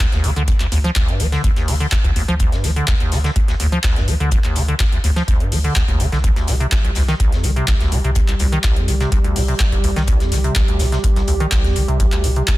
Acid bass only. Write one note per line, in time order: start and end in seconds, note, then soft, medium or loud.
0.12 0.25 D#2 medium
0.24 0.31 D3 medium
0.36 0.43 D3 medium
0.48 0.52 D2 medium
0.60 0.67 D2 medium
0.72 0.79 D#2 medium
0.84 0.91 F3 loud
0.96 1.10 D2 loud
1.08 1.21 G2 loud
1.20 1.27 F3 medium
1.32 1.42 D3 medium
1.44 1.51 D2 loud
1.56 1.69 D#2 medium
1.68 1.75 D3 medium
1.80 1.87 D3 medium
1.92 1.96 D2 medium
2.04 2.11 D2 medium
2.16 2.23 D#2 medium
2.28 2.35 F3 loud
2.40 2.54 D2 medium
2.52 2.65 G2 loud
2.64 2.71 F3 medium
2.76 2.86 D3 medium
2.88 2.95 D2 loud
3.00 3.13 D#2 medium
3.12 3.19 D3 medium
3.24 3.31 D3 medium
3.36 3.40 D2 medium
3.48 3.55 D2 medium
3.60 3.67 D#2 medium
3.72 3.79 F3 loud
3.84 3.98 D2 loud
3.96 4.09 G2 loud
4.08 4.15 F3 medium
4.20 4.30 D3 medium
4.32 4.39 D2 loud
4.44 4.57 D#2 medium
4.56 4.63 D3 medium
4.68 4.75 D3 medium
4.80 4.84 D2 medium
4.92 4.99 D2 medium
5.04 5.11 D#2 medium
5.16 5.23 F3 loud
5.28 5.42 D2 medium
5.40 5.53 G2 loud
5.52 5.59 F3 medium
5.64 5.74 D3 medium
5.76 5.83 D2 loud
5.88 6.01 D#2 medium
6.00 6.07 D3 medium
6.12 6.19 D3 medium
6.24 6.31 C2 loud
6.36 6.49 D2 medium
6.48 6.55 C3 medium
6.60 6.67 C3 medium
6.72 6.76 C2 medium
6.84 6.91 C2 medium
6.96 7.03 D2 medium
7.08 7.15 D#3 loud
7.20 7.34 C2 medium
7.32 7.45 F2 loud
7.44 7.51 D#3 medium
7.56 7.66 C3 medium
7.68 7.75 C2 loud
7.80 7.93 D2 medium
7.92 7.99 C3 medium
8.04 8.11 C3 medium
8.16 8.20 C2 medium
8.28 8.35 C2 medium
8.40 8.47 D2 medium
8.52 8.59 D#3 loud
8.64 8.78 C2 loud
8.76 8.89 F2 loud
8.88 8.95 D#3 medium
9.00 9.10 C3 medium
9.12 9.19 C2 medium
9.24 9.37 D2 medium
9.36 9.43 C3 medium
9.48 9.55 C3 medium
9.60 9.64 C2 medium
9.72 9.79 C2 medium
9.84 9.91 D2 medium
9.96 10.03 D#3 loud
10.08 10.22 C2 loud
10.20 10.33 F2 loud
10.32 10.39 D#3 medium
10.44 10.54 C3 medium
10.56 10.63 C2 loud
10.68 10.81 D2 medium
10.80 10.87 C3 medium
10.92 10.99 C3 medium
11.04 11.08 C2 medium
11.16 11.23 C2 medium
11.28 11.35 D2 medium
11.40 11.47 D#3 loud
11.52 11.66 C2 loud
11.64 11.77 F2 loud
11.76 11.83 D#3 medium
11.88 11.98 C3 medium
12.00 12.07 C2 loud
12.12 12.25 D2 medium
12.24 12.31 C3 medium
12.36 12.43 C3 medium
12.48 12.52 C2 medium